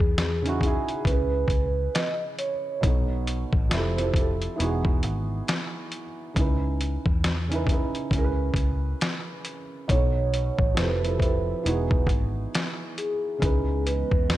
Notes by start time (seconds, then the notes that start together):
Already playing: C#3 C#4 D#4 E4 G#4 B4
0.00 E2, kick
0.18 snare, closed hi-hat
0.42 C#3 C#4 D#4, closed hi-hat
0.47 E4 F#4
0.61 C#3 C#4 D#4, kick, closed hi-hat
0.66 E4 G#4
0.89 closed hi-hat
1.05 C#2 C#3 C#4 E4 B4, kick, closed hi-hat
1.10 G#4 B4
1.48 C#2, kick, closed hi-hat
1.95 D#5, snare, closed hi-hat
2.39 C#5, closed hi-hat
2.81 B1 B2 B3 D#4, kick, closed hi-hat
2.86 A4 C#5
3.27 closed hi-hat
3.53 A1, kick
3.70 F1 F3 C4 E4, snare, closed hi-hat
3.75 G4 A4
3.96 F3 C4 E4, closed hi-hat
4.01 G4 A4
4.13 F3 C4 E4, kick, closed hi-hat
4.19 G4 A4
4.42 closed hi-hat
4.56 E1 E3 B3 D#4, closed hi-hat
4.61 F#4 G#4
4.85 kick
5.03 G#1, closed hi-hat
5.48 snare, closed hi-hat
5.92 closed hi-hat
6.34 C#2 C#3 C#4 D#4, kick, closed hi-hat
6.39 E4 B4
6.81 closed hi-hat
7.06 E2, kick
7.24 snare, closed hi-hat
7.48 C#3 C#4 D#4, closed hi-hat
7.53 E4 B4
7.66 C#3 C#4 D#4, kick, closed hi-hat
7.72 E4 B4
7.95 closed hi-hat
8.11 C#2 C#3 C#4 E4, kick, closed hi-hat
8.16 G#4 A#4
8.24 B4
8.54 C#2, kick, closed hi-hat
9.01 snare, closed hi-hat
9.45 closed hi-hat
9.88 B1 B2 B3 D#4 C#5, kick, closed hi-hat
9.93 A4 C#5
10.34 closed hi-hat
10.59 A1, kick
10.74 F1 F3 C4 E4, snare, closed hi-hat
10.79 G4 A4 B4
11.01 F3 C4 E4, closed hi-hat
11.07 G4 A4
11.18 F3 C4 E4, kick
11.22 G4 A4, closed hi-hat
11.63 E1 E3 B3 D#4, closed hi-hat
11.68 F#4 G#4
11.91 kick
12.07 G#1, kick, closed hi-hat
12.55 snare, closed hi-hat
12.98 G#4, closed hi-hat
13.38 C#3 E3 G#3 B3 C#4 D#4 D#5, kick
13.42 C#2 E4 B4, closed hi-hat
13.86 B4, closed hi-hat
14.11 E2, kick
14.30 snare, closed hi-hat